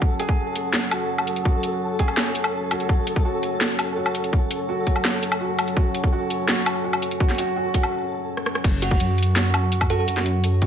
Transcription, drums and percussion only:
0.02 kick
0.20 closed hi-hat
0.29 kick
0.56 closed hi-hat
0.73 snare
0.91 closed hi-hat, low woodblock
1.18 low woodblock
1.27 closed hi-hat
1.36 closed hi-hat
1.45 kick
1.63 closed hi-hat
1.99 kick, closed hi-hat
2.08 low woodblock
2.17 snare
2.35 closed hi-hat
2.44 low woodblock
2.71 closed hi-hat, low woodblock
2.80 closed hi-hat
2.89 kick
3.07 closed hi-hat
3.16 kick
3.43 closed hi-hat
3.61 snare
3.79 closed hi-hat, low woodblock
4.06 low woodblock
4.15 closed hi-hat
4.24 closed hi-hat
4.33 kick
4.51 closed hi-hat
4.87 kick, closed hi-hat
4.96 low woodblock
5.05 snare
5.23 closed hi-hat
5.32 low woodblock
5.59 closed hi-hat, low woodblock
5.68 closed hi-hat
5.77 kick
5.95 closed hi-hat
6.04 kick
6.30 closed hi-hat
6.48 snare
6.66 closed hi-hat, low woodblock
6.93 low woodblock
7.02 closed hi-hat
7.11 closed hi-hat
7.20 kick
7.29 snare
7.38 closed hi-hat
7.74 kick, closed hi-hat
7.83 low woodblock
8.37 cross-stick
8.46 cross-stick
8.55 cross-stick
8.64 kick, closed hi-hat, crash
8.82 closed hi-hat
8.91 kick
9.00 closed hi-hat
9.18 closed hi-hat
9.23 closed hi-hat
9.36 snare, closed hi-hat
9.54 closed hi-hat, low woodblock
9.72 closed hi-hat
9.81 kick, low woodblock
9.90 closed hi-hat
10.08 closed hi-hat
10.17 snare
10.26 closed hi-hat
10.44 closed hi-hat
10.62 kick, closed hi-hat

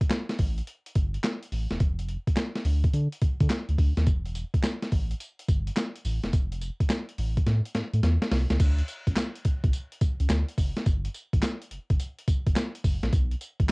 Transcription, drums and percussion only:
0.01 kick, closed hi-hat
0.10 snare, clap, closed hi-hat
0.29 snare, closed hi-hat
0.39 kick, open hi-hat
0.58 closed hi-hat
0.67 closed hi-hat
0.86 closed hi-hat
0.95 kick, closed hi-hat
1.14 closed hi-hat
1.24 snare, clap, closed hi-hat
1.43 closed hi-hat
1.52 open hi-hat
1.71 snare, closed hi-hat
1.80 kick, closed hi-hat
1.99 closed hi-hat
2.09 closed hi-hat
2.27 kick, closed hi-hat
2.37 snare, clap, closed hi-hat
2.56 snare, closed hi-hat
2.65 open hi-hat
2.84 kick, closed hi-hat
2.94 closed hi-hat
3.12 closed hi-hat
3.22 kick, closed hi-hat
3.40 kick, closed hi-hat
3.50 snare, clap, closed hi-hat
3.69 closed hi-hat
3.78 kick, open hi-hat
3.97 snare, closed hi-hat
4.07 kick, closed hi-hat, tambourine
4.26 closed hi-hat
4.35 closed hi-hat, tambourine
4.54 kick, closed hi-hat
4.63 snare, clap, closed hi-hat, tambourine
4.82 snare, closed hi-hat
4.92 kick, open hi-hat
5.11 closed hi-hat
5.20 closed hi-hat, tambourine
5.39 closed hi-hat
5.48 kick, closed hi-hat, tambourine
5.67 closed hi-hat
5.76 snare, clap, closed hi-hat, tambourine
5.96 closed hi-hat
6.05 open hi-hat, tambourine
6.24 snare, closed hi-hat
6.33 kick, closed hi-hat, tambourine
6.52 closed hi-hat
6.62 closed hi-hat, tambourine
6.80 kick, closed hi-hat
6.90 snare, clap, closed hi-hat, tambourine
7.09 closed hi-hat
7.18 open hi-hat
7.37 kick, closed hi-hat
7.47 snare, closed hi-hat
7.65 closed hi-hat
7.75 snare, closed hi-hat
7.94 closed hi-hat
8.03 snare, closed hi-hat
8.22 snare, closed hi-hat
8.32 snare, open hi-hat
8.50 snare, closed hi-hat
8.60 kick, closed hi-hat, crash, tambourine
8.78 closed hi-hat
8.88 closed hi-hat, tambourine
9.07 kick, closed hi-hat
9.16 snare, clap, closed hi-hat, tambourine
9.35 closed hi-hat
9.45 kick, closed hi-hat
9.64 kick, closed hi-hat
9.73 closed hi-hat, tambourine
9.92 closed hi-hat
10.01 kick, closed hi-hat, tambourine
10.20 closed hi-hat
10.29 snare, clap, closed hi-hat, tambourine
10.49 closed hi-hat
10.58 kick, open hi-hat, tambourine
10.77 snare, closed hi-hat
10.86 kick, closed hi-hat, tambourine
11.05 closed hi-hat
11.14 closed hi-hat, tambourine
11.33 kick, closed hi-hat
11.43 snare, clap, closed hi-hat, tambourine
11.62 closed hi-hat
11.71 closed hi-hat
11.90 kick, closed hi-hat
12.00 closed hi-hat, tambourine
12.19 closed hi-hat
12.28 kick, closed hi-hat, tambourine
12.47 kick, closed hi-hat
12.56 snare, clap, closed hi-hat, tambourine
12.75 closed hi-hat
12.84 kick, open hi-hat, tambourine
13.03 snare, closed hi-hat
13.13 kick, closed hi-hat, tambourine
13.31 closed hi-hat
13.41 closed hi-hat, tambourine
13.60 kick, closed hi-hat

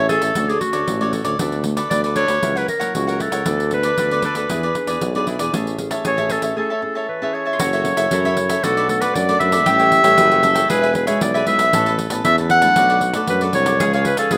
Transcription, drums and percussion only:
0.09 pandeiro
0.22 pandeiro
0.35 pandeiro
0.49 pandeiro
0.61 pandeiro
0.73 pandeiro
0.88 pandeiro
1.01 pandeiro
1.13 pandeiro
1.25 pandeiro
1.39 pandeiro
1.52 pandeiro
1.64 pandeiro
1.77 pandeiro
1.91 pandeiro
2.04 pandeiro
2.16 pandeiro
2.28 pandeiro
2.43 pandeiro
2.57 pandeiro
2.68 pandeiro
2.81 pandeiro
2.95 pandeiro
3.09 pandeiro
3.20 pandeiro
3.32 pandeiro
3.46 pandeiro
3.60 pandeiro
3.71 pandeiro
3.83 pandeiro
3.98 pandeiro
4.11 pandeiro
4.22 pandeiro
4.35 pandeiro
4.50 pandeiro
4.63 pandeiro
4.75 pandeiro
4.87 pandeiro
5.01 pandeiro
5.15 pandeiro
5.27 pandeiro
5.39 pandeiro
5.54 pandeiro
5.67 pandeiro
5.78 pandeiro
5.91 pandeiro
6.05 pandeiro
6.18 pandeiro
6.30 pandeiro
6.42 pandeiro
7.59 pandeiro
7.73 pandeiro
7.85 pandeiro
7.97 pandeiro
8.11 pandeiro
8.25 pandeiro
8.37 pandeiro
8.49 pandeiro
8.64 pandeiro
8.77 pandeiro
8.89 pandeiro
9.02 pandeiro
9.15 pandeiro
9.29 pandeiro
9.40 pandeiro
9.52 pandeiro
9.66 pandeiro
9.79 pandeiro
9.92 pandeiro
10.04 pandeiro
10.18 pandeiro
10.31 pandeiro
10.43 pandeiro
10.55 pandeiro
10.70 pandeiro
10.83 pandeiro
10.95 pandeiro
11.07 pandeiro
11.21 pandeiro
11.35 pandeiro
11.47 pandeiro
11.59 pandeiro
11.73 pandeiro
11.86 pandeiro
11.99 pandeiro
12.10 pandeiro
12.25 pandeiro
12.38 pandeiro
12.50 pandeiro
12.62 pandeiro
12.76 pandeiro
12.90 pandeiro
13.01 pandeiro
13.14 pandeiro
13.27 pandeiro
13.41 pandeiro
13.53 pandeiro
13.66 pandeiro
13.80 pandeiro
13.93 pandeiro
14.05 pandeiro
14.17 pandeiro
14.31 pandeiro

